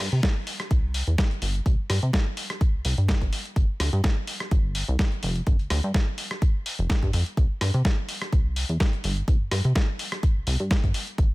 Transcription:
0.12 0.21 C3 loud
0.12 closed hi-hat medium
0.23 kick loud
0.23 snare loud
0.23 closed hi-hat medium
0.47 open hi-hat loud
0.60 cross-stick medium
0.60 closed hi-hat medium
0.71 1.02 C2 medium
0.71 kick loud
0.71 closed hi-hat medium
0.94 open hi-hat loud
1.07 1.16 E2 medium
1.07 closed hi-hat medium
1.18 kick loud
1.18 snare loud
1.18 closed hi-hat medium
1.31 closed hi-hat soft
1.42 1.61 G1 loud
1.42 open hi-hat loud
1.55 closed hi-hat medium
1.66 1.76 C2 loud
1.66 kick loud
1.66 closed hi-hat medium
1.90 2.00 G2 loud
1.90 cross-stick medium
1.90 open hi-hat loud
2.03 2.11 C3 loud
2.03 closed hi-hat medium
2.13 kick loud
2.13 snare loud
2.13 closed hi-hat medium
2.37 open hi-hat loud
2.50 cross-stick medium
2.50 closed hi-hat medium
2.61 kick loud
2.61 closed hi-hat medium
2.74 2.83 C2 soft
2.85 2.95 C2 loud
2.85 open hi-hat loud
2.98 3.15 G2 medium
2.98 closed hi-hat medium
3.08 kick loud
3.08 snare loud
3.08 closed hi-hat medium
3.21 3.30 G1 loud
3.21 kick medium
3.21 closed hi-hat soft
3.33 open hi-hat loud
3.45 closed hi-hat medium
3.56 3.66 G1 loud
3.56 kick loud
3.56 closed hi-hat medium
3.80 3.90 D2 loud
3.80 cross-stick medium
3.80 open hi-hat loud
3.93 4.01 G2 loud
3.93 closed hi-hat medium
4.04 kick loud
4.04 snare loud
4.04 closed hi-hat medium
4.27 open hi-hat loud
4.40 cross-stick medium
4.40 closed hi-hat medium
4.51 4.83 G1 medium
4.51 kick loud
4.51 closed hi-hat medium
4.75 open hi-hat loud
4.88 4.97 C2 medium
4.99 kick loud
4.99 snare loud
4.99 closed hi-hat medium
5.12 closed hi-hat soft
5.23 5.42 F1 loud
5.23 open hi-hat loud
5.36 closed hi-hat medium
5.47 5.57 G1 loud
5.47 kick loud
5.47 closed hi-hat medium
5.59 5.69 D2 soft
5.59 closed hi-hat soft
5.70 5.81 D2 loud
5.70 cross-stick medium
5.70 open hi-hat loud
5.83 5.92 G2 loud
5.83 closed hi-hat medium
5.94 kick loud
5.94 snare loud
5.94 closed hi-hat medium
6.18 open hi-hat loud
6.31 cross-stick medium
6.31 closed hi-hat soft
6.42 kick loud
6.42 closed hi-hat medium
6.66 open hi-hat loud
6.79 6.87 F1 medium
6.79 closed hi-hat soft
6.90 kick loud
6.90 snare loud
6.90 closed hi-hat medium
7.02 7.11 G2 loud
7.02 kick medium
7.02 closed hi-hat soft
7.13 7.23 F2 medium
7.13 open hi-hat loud
7.26 closed hi-hat soft
7.37 7.47 C2 loud
7.37 kick loud
7.37 closed hi-hat medium
7.61 7.71 G2 loud
7.61 cross-stick medium
7.61 open hi-hat loud
7.74 7.82 C3 loud
7.74 closed hi-hat medium
7.85 kick loud
7.85 snare loud
7.85 closed hi-hat medium
8.09 open hi-hat loud
8.22 cross-stick medium
8.22 closed hi-hat soft
8.32 8.64 C2 medium
8.32 kick loud
8.32 closed hi-hat medium
8.56 open hi-hat loud
8.69 8.78 E2 medium
8.69 closed hi-hat medium
8.80 kick loud
8.80 snare loud
8.80 closed hi-hat medium
8.93 closed hi-hat soft
9.04 9.23 G1 loud
9.04 open hi-hat loud
9.17 closed hi-hat medium
9.28 9.38 C2 loud
9.28 kick loud
9.28 closed hi-hat medium
9.41 9.49 G2 soft
9.51 9.61 G2 loud
9.51 cross-stick medium
9.51 open hi-hat loud
9.64 9.73 C3 loud
9.64 closed hi-hat medium
9.75 kick loud
9.75 snare loud
9.75 closed hi-hat medium
9.99 open hi-hat loud
10.12 cross-stick medium
10.12 closed hi-hat soft
10.23 kick loud
10.23 closed hi-hat medium
10.36 10.45 C2 soft
10.47 10.57 C2 loud
10.47 open hi-hat loud
10.60 10.77 G2 medium
10.60 closed hi-hat medium
10.71 kick loud
10.71 snare loud
10.71 closed hi-hat medium
10.84 10.92 G1 loud
10.84 kick medium
10.84 closed hi-hat soft
10.94 open hi-hat loud
11.07 closed hi-hat medium
11.18 11.28 G1 loud
11.18 kick loud
11.18 closed hi-hat medium

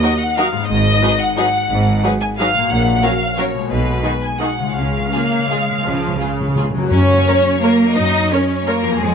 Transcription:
0.00 0.63 D#3 medium
0.00 0.12 F#3 medium
0.00 0.65 A#3 medium
0.00 0.60 D#4 medium
0.00 0.11 D#4 medium
0.00 0.53 F#4 soft
0.00 0.11 F#4 medium
0.00 0.19 D#5 medium
0.00 0.64 D#5 medium
0.04 0.12 A#4 medium
0.19 0.37 F#5 medium
0.37 0.46 F#3 medium
0.37 0.46 D#4 medium
0.37 0.45 F#4 medium
0.37 0.45 A#4 medium
0.37 0.70 F5 medium
0.52 2.64 G#2 medium
0.57 2.66 B3 medium
0.61 2.68 D#4 medium
0.66 2.70 D#5 medium
0.66 1.19 D#5 loud
0.70 0.97 G#1 medium
0.70 0.97 G#2 medium
1.02 1.10 F#3 medium
1.02 1.11 D#4 medium
1.02 1.11 G#4 medium
1.02 1.10 B4 medium
1.19 1.35 F#5 loud
1.36 1.45 F#3 medium
1.36 1.45 D#4 medium
1.36 1.46 G#4 medium
1.36 1.46 B4 medium
1.36 2.02 F#5 medium
1.69 1.97 G#1 medium
1.69 1.98 G#2 medium
2.04 2.12 F#3 medium
2.04 2.12 D#4 medium
2.04 2.13 G#4 medium
2.04 2.13 B4 medium
2.20 2.27 G#5 medium
2.38 2.47 F#3 medium
2.38 2.48 D#4 medium
2.38 2.48 G#4 medium
2.38 2.48 B4 medium
2.38 2.70 F5 loud
2.54 3.64 A#2 medium
2.58 3.66 A#3 medium
2.63 3.62 F#4 medium
2.67 2.97 A#1 medium
2.67 2.98 A#2 medium
2.67 3.71 C#5 soft
2.67 3.03 F#5 medium
3.03 3.11 F#3 medium
3.03 3.12 C#4 medium
3.03 3.11 F#4 medium
3.03 3.11 A#4 medium
3.03 3.38 F5 medium
3.37 3.45 F#3 medium
3.37 3.46 C#4 medium
3.37 3.46 F#4 medium
3.37 3.46 A#4 medium
3.37 3.72 C#5 medium
3.54 4.69 B2 medium
3.58 4.62 G#3 soft
3.63 4.73 F#4 soft
3.68 3.99 B1 medium
3.68 3.99 B2 medium
3.68 4.76 D#5 soft
3.72 4.22 B4 medium
4.03 4.12 D#3 soft
4.03 4.11 D#4 soft
4.03 4.12 F#4 medium
4.03 4.12 G#4 medium
4.23 4.41 G#5 medium
4.39 4.48 D#3 medium
4.39 4.48 D#4 medium
4.39 4.49 F#4 soft
4.39 4.50 G#4 medium
4.39 4.75 F#5 medium
4.59 6.84 C#3 soft
4.63 6.86 G#3 soft
4.68 6.89 F4 soft
4.72 6.86 C#5 soft
4.72 6.57 F5 medium
4.76 5.06 C#2 medium
4.76 4.82 C#3 soft
4.76 5.07 C#3 medium
4.83 4.90 C#3 soft
4.91 4.98 C#3 soft
4.99 5.06 C#3 soft
5.07 5.15 C#3 soft
5.12 5.23 C#3 soft
5.12 5.48 A#3 medium
5.12 5.21 F4 soft
5.12 5.20 G#4 soft
5.24 5.30 C#3 soft
5.31 5.38 C#3 soft
5.39 5.46 C#3 soft
5.48 5.55 C#3 soft
5.48 5.86 G#3 medium
5.48 5.59 F4 soft
5.48 5.58 G#4 medium
5.56 5.62 C#3 soft
5.64 5.69 C#3 soft
5.71 5.77 C#3 soft
5.78 5.85 C#3 soft
5.85 6.15 C#2 medium
5.85 6.15 C#3 medium
5.85 5.92 C#3 medium
5.85 6.21 F3 medium
5.93 5.99 C#3 soft
6.00 6.07 C#3 medium
6.08 6.14 C#3 medium
6.16 6.23 C#3 medium
6.20 6.73 C#3 medium
6.20 6.28 F4 soft
6.20 6.28 G#4 soft
6.24 6.31 C#3 medium
6.33 6.39 C#3 medium
6.40 6.47 C#3 medium
6.48 6.54 C#3 medium
6.56 6.61 C#3 medium
6.56 6.64 F4 soft
6.56 6.65 G#4 soft
6.62 6.69 C#3 medium
6.70 8.93 F#2 medium
6.70 6.76 C#3 medium
6.75 6.84 C#3 medium
6.75 6.91 F#3 soft
6.75 8.96 A#3 soft
6.83 8.98 F#4 soft
6.87 7.20 F#2 medium
6.87 7.41 F#2 medium
6.87 8.95 C#5 soft
6.87 7.58 C#5 medium
6.91 7.59 C#4 medium
6.91 7.59 C#5 medium
7.28 7.36 A#4 medium
7.28 7.37 C#5 soft
7.62 7.97 A#3 medium
7.62 7.97 A#4 medium
7.62 7.71 A#4 medium
7.62 7.97 A#4 medium
7.62 7.71 C#5 medium
7.95 8.25 F#2 medium
7.95 8.31 D#4 medium
7.95 8.30 D#5 medium
7.95 8.31 D#5 medium
8.31 8.67 C#4 medium
8.31 8.41 A#4 soft
8.31 8.67 C#5 medium
8.31 8.41 C#5 medium
8.67 9.01 A#3 medium
8.67 9.01 A#4 medium
8.67 8.75 A#4 medium
8.67 9.00 A#4 medium
8.67 8.76 C#5 medium
8.83 9.15 F2 medium
8.88 9.15 B3 soft
8.92 9.15 G#4 soft
8.97 9.15 F2 medium
8.97 9.15 G#4 medium
8.97 9.15 C#5 soft
9.02 9.15 G#3 medium

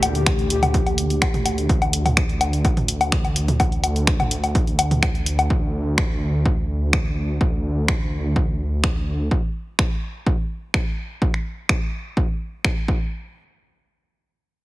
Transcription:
0.00 1.67 D2 medium
0.00 0.48 A#2 loud
0.00 0.48 A3 loud
0.00 0.48 G4 loud
0.00 closed hi-hat loud
0.00 downlifter medium
0.00 low woodblock medium
0.15 closed hi-hat soft
0.26 finger snap loud
0.26 kick loud
0.26 closed hi-hat soft
0.26 low woodblock medium
0.39 closed hi-hat soft
0.50 1.67 A#2 medium
0.50 1.67 A3 medium
0.50 1.67 G4 medium
0.50 closed hi-hat medium
0.63 closed hi-hat soft
0.63 mid tom medium
0.63 low woodblock medium
0.74 kick loud
0.74 closed hi-hat soft
0.87 closed hi-hat soft
0.87 low woodblock soft
0.98 closed hi-hat loud
1.10 closed hi-hat soft
1.22 finger snap loud
1.22 kick loud
1.22 closed hi-hat soft
1.22 low woodblock medium
1.34 closed hi-hat soft
1.34 mid tom medium
1.46 closed hi-hat medium
1.46 low woodblock medium
1.58 closed hi-hat soft
1.69 3.58 D2 medium
1.69 kick loud
1.69 closed hi-hat soft
1.82 closed hi-hat soft
1.82 low woodblock medium
1.93 closed hi-hat loud
2.06 closed hi-hat soft
2.06 mid tom medium
2.06 low woodblock medium
2.17 finger snap loud
2.17 kick loud
2.17 closed hi-hat soft
2.29 closed hi-hat soft
2.41 closed hi-hat medium
2.41 low woodblock medium
2.53 closed hi-hat soft
2.65 kick loud
2.65 closed hi-hat soft
2.65 low woodblock medium
2.77 closed hi-hat soft
2.77 mid tom medium
2.88 closed hi-hat loud
3.01 closed hi-hat soft
3.01 low woodblock medium
3.12 finger snap loud
3.12 kick loud
3.12 closed hi-hat soft
3.25 closed hi-hat soft
3.25 low woodblock medium
3.36 closed hi-hat medium
3.48 closed hi-hat soft
3.48 mid tom medium
3.60 5.48 D2 medium
3.60 kick loud
3.60 closed hi-hat soft
3.60 low woodblock medium
3.72 closed hi-hat soft
3.84 closed hi-hat loud
3.84 low woodblock medium
3.96 closed hi-hat soft
4.07 finger snap loud
4.07 kick loud
4.07 closed hi-hat soft
4.20 closed hi-hat soft
4.20 mid tom medium
4.20 low woodblock medium
4.31 closed hi-hat medium
4.44 closed hi-hat soft
4.44 low woodblock medium
4.55 kick loud
4.55 closed hi-hat soft
4.67 closed hi-hat soft
4.79 closed hi-hat loud
4.79 low woodblock medium
4.91 closed hi-hat soft
4.91 mid tom medium
5.03 finger snap loud
5.03 kick loud
5.03 closed hi-hat soft
5.03 low woodblock medium
5.15 closed hi-hat soft
5.26 closed hi-hat medium
5.39 closed hi-hat soft
5.39 low woodblock medium
5.50 7.38 D2 medium
5.50 kick loud
5.98 finger snap loud
5.98 kick loud
6.46 kick loud
6.93 finger snap loud
6.93 kick loud
7.41 9.29 D2 medium
7.41 kick loud
7.88 finger snap loud
7.88 kick loud
8.36 kick loud
8.84 finger snap loud
8.84 kick loud
9.31 kick loud
9.79 finger snap loud
9.79 kick loud
10.27 kick loud
10.74 finger snap loud
10.74 kick loud
11.22 kick loud
11.34 finger snap soft
11.69 finger snap loud
11.69 kick loud
12.17 kick loud
12.65 finger snap loud
12.65 kick loud
12.88 kick loud

